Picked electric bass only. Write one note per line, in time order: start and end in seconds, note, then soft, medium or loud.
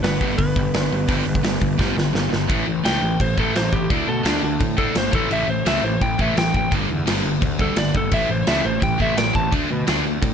0.03 0.16 G1 medium
0.21 0.35 G1 loud
0.39 0.52 G1 medium
0.56 0.70 G1 medium
0.74 0.87 G1 medium
0.91 1.05 G1 medium
1.09 1.22 G1 loud
1.26 1.40 G1 loud
1.44 1.58 G1 medium
1.62 1.75 G1 medium
1.79 1.93 G1 medium
1.97 2.10 G1 loud
2.15 2.28 G1 loud
2.33 2.46 G1 medium
2.49 2.63 A1 medium
2.68 2.81 A1 medium
2.85 2.98 C#2 medium
3.03 3.16 A1 loud
3.20 3.33 A1 loud
3.38 3.51 A1 medium
3.55 3.69 A1 medium
3.73 3.86 A1 medium
3.90 4.04 D2 medium
4.08 4.21 B2 medium
4.25 4.38 D2 loud
4.43 4.57 D2 loud
4.61 4.87 A2 loud
4.96 5.09 G1 medium
5.13 5.27 A1 medium
5.31 5.44 A1 medium
5.48 5.61 A1 loud
5.65 5.79 C#2 medium
5.83 5.97 A1 medium
6.01 6.15 A1 loud
6.19 6.33 A1 medium
6.36 6.50 A1 medium
6.55 6.68 A1 medium
6.72 6.85 G1 medium
6.90 7.03 E2 medium
7.07 7.20 G1 medium
7.24 7.38 G1 medium
7.42 7.69 D2 medium
7.77 7.90 G1 medium
7.95 8.08 G1 medium
8.12 8.25 A1 medium
8.30 8.43 A1 medium
8.47 8.60 C#2 medium
8.65 8.78 A1 loud
8.82 8.96 A1 medium
9.00 9.13 A1 loud
9.17 9.31 A1 loud
9.35 9.48 A1 medium
9.52 9.66 D2 medium
9.71 9.84 B2 medium
9.88 10.01 D2 medium
10.06 10.19 D2 loud
10.22 10.34 A2 loud